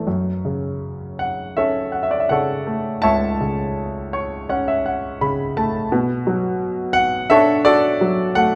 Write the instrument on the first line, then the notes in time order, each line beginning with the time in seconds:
grand piano
0.07 F#2
0.45 C#3
1.19 F#5
1.57 C#4 A4 C#5 E5
1.92 F#5
2.03 E5
2.11 D5
2.20 E5
2.29 C#3 A4 C#5 F#5
2.67 A3
3.02 C#2 C#5 E5 A5
3.41 C#3
4.13 C#5
4.49 C#4 F#5
4.68 E5
4.86 F#5
5.21 C#3 B5
5.57 A3 A5
5.92 B2
6.27 F#3
6.93 F#5
7.30 D4 A4 C#5 E5
7.65 F#4 A4 D5
8.01 F#3
8.35 A3 F#5